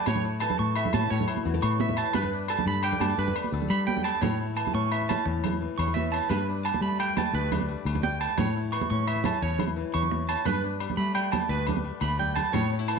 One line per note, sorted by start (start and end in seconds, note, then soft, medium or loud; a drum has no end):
0.00 0.93 A3 medium
0.00 0.42 A4 medium
0.06 0.75 A2 medium
0.06 0.47 A2 medium
0.06 0.23 C#5 medium
0.06 high conga medium
0.06 low agogo medium
0.15 low conga medium
0.24 0.76 E4 medium
0.40 1.44 E3 medium
0.40 1.45 A4 medium
0.40 0.57 A5 medium
0.40 low agogo medium
0.50 low conga medium
0.59 0.86 A2 medium
0.59 0.75 C#6 medium
0.75 1.09 A2 medium
0.75 1.27 E4 medium
0.75 0.92 E5 medium
0.75 low agogo medium
0.85 low conga medium
0.93 1.07 A2 medium
0.93 2.12 C#4 medium
0.93 1.09 A5 medium
0.93 high conga medium
0.93 low agogo medium
1.03 low conga soft
1.10 1.95 A2 medium
1.10 1.24 A2 medium
1.10 1.26 C#5 medium
1.20 low conga medium
1.28 2.12 E4 medium
1.28 low agogo medium
1.37 high conga medium
1.37 low conga soft
1.45 1.59 E2 medium
1.45 2.14 E3 medium
1.45 1.54 F#4 medium
1.45 low conga soft
1.54 2.14 A4 medium
1.54 low conga medium
1.62 2.03 A2 loud
1.62 1.79 C#3 medium
1.62 1.78 C#6 medium
1.62 low conga soft
1.62 low agogo medium
1.79 1.97 B2 medium
1.79 1.96 E5 medium
1.79 high conga medium
1.89 low conga medium
1.97 2.14 A2 medium
1.97 2.13 A5 medium
1.97 low agogo medium
2.13 3.16 G2 medium
2.13 2.55 G2 medium
2.13 2.30 B4 medium
2.13 high conga medium
2.13 low conga soft
2.13 low agogo medium
2.23 low conga medium
2.33 2.83 D4 medium
2.33 low conga soft
2.48 3.51 G3 medium
2.48 3.52 A4 medium
2.48 2.65 A5 medium
2.48 low agogo medium
2.59 high conga medium
2.59 low conga medium
2.66 2.93 G2 medium
2.66 2.83 B5 medium
2.76 low conga soft
2.83 4.20 D3 medium
2.83 3.34 D4 medium
2.83 2.99 G5 medium
2.83 low agogo medium
2.92 low conga medium
3.00 3.14 G2 medium
3.00 4.74 A3 medium
3.00 3.17 A5 medium
3.00 high conga medium
3.00 low agogo medium
3.11 low conga soft
3.17 3.86 G2 medium
3.17 3.32 G2 medium
3.17 3.34 B4 medium
3.28 low conga medium
3.35 4.20 D4 medium
3.35 low agogo medium
3.44 high conga medium
3.44 low conga soft
3.52 3.66 D2 medium
3.52 4.20 G3 medium
3.52 4.20 A4 medium
3.62 low conga medium
3.70 4.11 G3 medium
3.70 3.86 B5 medium
3.70 low agogo medium
3.87 4.04 F#2 medium
3.87 4.03 G5 medium
3.87 high conga medium
3.87 low conga soft
3.97 low conga medium
4.04 4.22 G2 medium
4.04 4.20 A5 medium
4.04 low agogo medium
4.14 low conga soft
4.21 4.63 A2 medium
4.21 5.25 A2 medium
4.21 4.38 C#5 medium
4.21 high conga medium
4.21 low conga medium
4.21 low agogo medium
4.40 5.43 E4 medium
4.50 low conga soft
4.56 4.90 E3 medium
4.56 4.73 A5 medium
4.56 low agogo medium
4.67 high conga medium
4.67 low conga medium
4.74 5.15 A2 medium
4.74 5.08 C#4 medium
4.74 4.90 C#6 medium
4.84 low conga soft
4.91 5.60 E3 medium
4.91 5.08 E5 medium
4.91 low conga soft
4.91 low agogo medium
5.02 low conga soft
5.09 5.78 C#4 medium
5.09 5.25 A5 medium
5.09 high conga medium
5.09 low conga medium
5.09 low agogo medium
5.26 5.67 E2 medium
5.26 6.28 A2 medium
5.26 muted clean electric guitar stroke medium
5.36 low conga soft
5.44 6.28 E4 medium
5.44 low conga medium
5.44 low agogo medium
5.53 high conga medium
5.61 5.95 E3 medium
5.78 6.19 E2 medium
5.78 6.12 C#4 medium
5.78 5.94 C#6 medium
5.78 low agogo medium
5.87 low conga medium
5.94 6.30 E3 medium
5.94 6.11 E5 medium
5.94 high conga medium
6.12 6.28 C#4 medium
6.12 6.28 A5 medium
6.12 low agogo medium
6.23 low conga soft
6.29 6.71 G2 medium
6.29 7.32 G2 medium
6.29 6.46 B4 medium
6.29 high conga medium
6.29 low conga medium
6.29 low agogo medium
6.40 low conga soft
6.48 7.51 D4 medium
6.57 low conga soft
6.65 6.98 G3 medium
6.65 6.81 A5 medium
6.65 low agogo medium
6.74 high conga medium
6.74 low conga medium
6.81 7.22 G3 medium
6.81 7.16 A3 medium
6.81 6.98 B5 medium
6.92 low conga soft
6.99 7.67 G3 medium
6.99 7.16 G5 medium
6.99 low conga soft
6.99 low agogo medium
7.09 low conga soft
7.16 7.86 A3 medium
7.16 7.33 A5 medium
7.16 high conga medium
7.16 low conga medium
7.16 low agogo medium
7.33 7.74 D2 medium
7.33 8.36 G2 medium
7.33 7.50 B4 medium
7.44 low conga soft
7.52 8.36 D4 medium
7.52 low conga medium
7.52 low agogo medium
7.61 high conga medium
7.68 8.02 G3 medium
7.85 8.26 D2 medium
7.85 8.21 A3 medium
7.85 low agogo medium
7.95 low conga medium
8.03 8.36 G3 medium
8.03 8.19 G5 medium
8.03 high conga medium
8.21 8.91 A3 medium
8.21 8.37 A5 medium
8.21 low agogo medium
8.30 low conga soft
8.38 9.41 A2 medium
8.38 8.79 A2 medium
8.38 8.54 C#5 medium
8.38 high conga medium
8.38 low conga medium
8.38 low agogo medium
8.47 low conga soft
8.56 9.59 E4 medium
8.65 low conga soft
8.72 9.06 E3 medium
8.72 8.88 C#6 medium
8.72 low agogo medium
8.81 high conga medium
8.81 low conga medium
8.90 9.31 A2 medium
8.90 9.24 C#4 medium
8.90 9.06 C#6 medium
8.99 low conga soft
9.07 9.75 E3 medium
9.07 9.23 E5 medium
9.07 low conga soft
9.07 low agogo medium
9.16 low conga soft
9.24 9.93 C#4 medium
9.24 9.41 A5 medium
9.24 high conga medium
9.24 low conga medium
9.24 low agogo medium
9.42 9.83 E2 medium
9.42 10.44 A2 medium
9.42 9.58 C#5 medium
9.50 low conga soft
9.59 10.44 E4 medium
9.59 low conga medium
9.59 low agogo medium
9.67 high conga medium
9.76 10.10 E3 medium
9.94 10.35 E2 medium
9.94 10.28 C#4 medium
9.94 10.10 C#6 medium
9.94 low agogo medium
10.02 low conga medium
10.11 10.46 E3 medium
10.11 muted clean electric guitar stroke medium
10.11 high conga medium
10.29 10.44 C#4 medium
10.29 10.44 A5 medium
10.29 low agogo medium
10.38 low conga soft
10.45 10.86 G2 medium
10.45 11.48 G2 medium
10.45 10.62 B4 medium
10.45 high conga medium
10.45 low conga medium
10.45 low agogo medium
10.64 11.66 D4 medium
10.64 low conga soft
10.80 11.13 G3 medium
10.80 low agogo medium
10.90 high conga medium
10.90 low conga medium
10.97 11.38 G3 medium
10.97 11.32 A3 medium
10.97 11.13 B5 medium
11.15 11.83 G3 medium
11.15 11.31 G5 medium
11.15 low conga soft
11.15 low agogo medium
11.32 12.02 A3 medium
11.32 11.48 A5 medium
11.32 high conga medium
11.32 low conga medium
11.32 low agogo medium
11.42 low conga soft
11.49 11.90 D2 medium
11.49 12.51 G2 medium
11.49 11.65 B4 medium
11.49 low conga soft
11.67 12.51 D4 medium
11.67 low conga medium
11.67 low agogo medium
11.77 high conga medium
11.84 12.18 G3 medium
12.01 12.42 D2 medium
12.01 12.36 A3 medium
12.01 12.18 B5 medium
12.01 high conga soft
12.01 low agogo medium
12.19 12.51 G3 medium
12.19 12.35 G5 medium
12.19 low conga medium
12.36 12.99 A3 medium
12.36 12.52 A5 medium
12.36 low conga medium
12.36 low agogo medium
12.52 12.99 A2 medium
12.52 12.94 A2 medium
12.52 12.69 C#5 medium
12.52 high conga medium
12.52 low conga medium
12.52 low agogo medium
12.63 low conga soft
12.70 12.79 C#4 soft
12.79 12.99 E4 soft
12.79 low conga soft
12.88 12.99 E3 medium
12.88 12.99 A5 medium
12.88 low agogo medium